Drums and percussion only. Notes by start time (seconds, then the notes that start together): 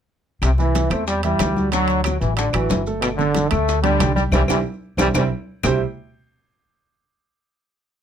0.42 high bongo, high conga, high timbale, claves, maracas
0.58 high bongo, high conga, maracas
0.75 high bongo, high conga, high timbale, low timbale, maracas
0.91 high bongo, high conga, high timbale, claves, maracas
1.08 high bongo, high conga, maracas
1.23 high bongo, high conga, high timbale, maracas
1.39 high bongo, low bongo, high conga, high timbale, low timbale, claves, maracas
1.56 high conga, maracas
1.72 high bongo, high timbale, maracas
1.88 high bongo, high conga, high timbale, maracas
2.04 high bongo, high conga, high timbale, low timbale, claves, maracas
2.22 high conga, maracas
2.37 high bongo, high conga, high timbale, maracas
2.53 high bongo, high conga, high timbale, claves, maracas
2.70 high bongo, low bongo, high conga, low timbale, maracas
2.86 high bongo, maracas
3.02 high bongo, high conga, high timbale, claves, maracas
3.19 high bongo, high conga, maracas
3.35 high bongo, high conga, high timbale, low timbale, maracas
3.51 high bongo, high timbale, claves, maracas
3.68 high bongo, high conga, maracas
3.84 high bongo, high conga, high timbale, maracas
4.00 high bongo, low bongo, high conga, high timbale, low timbale, claves, maracas
4.17 high conga, maracas
4.32 low bongo, high conga, high timbale, claves, maracas
4.48 low bongo, high conga, high timbale, claves, maracas
4.98 low bongo, high conga, high timbale, claves, maracas
5.15 low bongo, high conga, high timbale, claves, maracas
5.63 low bongo, low conga, low timbale, claves, maracas